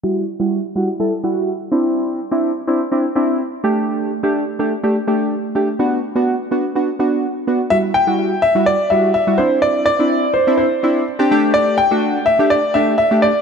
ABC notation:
X:1
M:4/4
L:1/16
Q:1/4=125
K:Em
V:1 name="Grand piano"
z16 | z16 | z16 | z16 |
e2 g4 e2 d2 e2 e2 c2 | d2 d4 c2 c4 z4 | d2 g4 e2 d2 e2 e2 d2 |]
V:2 name="Synth keys"
[G,EF]2 z [G,EF]2 z [G,EF] z [G,EA] z [G,EF]2 z2 [CDE]2- | [CDE]2 z [CDE]2 z [CDE] z [CDE] z [CDE]2 z2 [A,DG]2- | [A,DG]2 z [A,DG]2 z [A,DG] z [A,DG] z [A,DG]2 z2 [A,DG] z | [B,DF]2 z [B,DF]2 z [B,DF] z [B,DF] z [B,DF]2 z2 [B,DF] z |
[G,EF]2 z [G,EF]2 z2 [G,EF]2 z [G,EF]2 z [G,EF] [CDE]2- | [CDE]2 z [CDE]2 z2 [CDE]2 z [CDE]2 z [CDG] [A,DG]2- | [A,DG]2 z [A,DF]2 z2 [A,DG]2 z [A,DG]2 z [A,DG]2 z |]